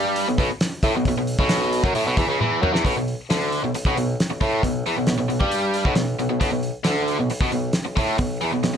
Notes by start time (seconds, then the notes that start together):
Already playing: G2 G3
0.16 open hi-hat
0.28 B1 B2
0.38 B1 B2, kick, open hi-hat
0.61 snare, open hi-hat
0.83 A2, kick, open hi-hat
0.94 B1 B2
1.05 B1 B2, kick, open hi-hat
1.17 B1 B2
1.27 open hi-hat
1.38 B1 B2, kick
1.49 snare, open hi-hat
1.73 open hi-hat
1.84 F#2 F#3, kick, snare
1.94 A2, open hi-hat
2.06 B1 B2
2.17 E2 E3, kick, open hi-hat
2.27 C#2 C#3
2.39 E2 E3, high tom
2.62 F#2 F#3, mid tom
2.72 E2 E3, snare
2.85 B1 B2, kick, open hi-hat
2.95 B1 B2
3.08 open hi-hat
3.29 D2 D3, snare, open hi-hat
3.52 open hi-hat
3.62 B1 B2
3.73 B1, muted overdriven electric guitar stroke, open hi-hat
3.85 B1 B2, kick
3.96 B1 B2, open hi-hat
4.20 snare, open hi-hat
4.30 B1, muted overdriven electric guitar stroke
4.41 A2, kick, open hi-hat
4.63 B1 B2, kick, open hi-hat
4.86 E2 E3, open hi-hat
4.97 B1 B2
5.07 B1 B2, snare, open hi-hat
5.19 B1 B2
5.29 B1 B2, open hi-hat
5.40 G2 G3, kick
5.52 open hi-hat
5.74 open hi-hat
5.85 B1 B2, kick
5.95 B1 B2, snare, open hi-hat
6.19 B1 B2, open hi-hat
6.29 B1 B2
6.40 B1 B2, kick, open hi-hat
6.51 B1 B2
6.63 open hi-hat
6.84 D2 D3, snare, open hi-hat
7.08 open hi-hat
7.19 B1 B2
7.30 B1, muted overdriven electric guitar stroke, open hi-hat
7.41 B2, kick
7.52 B1 B2, open hi-hat
7.73 snare, open hi-hat
7.85 B1, muted overdriven electric guitar stroke
7.96 A2, kick, open hi-hat
8.18 B1 B2, kick, open hi-hat
8.41 E2 E3, open hi-hat
8.53 B1 B2
8.63 B1 B2, snare, open hi-hat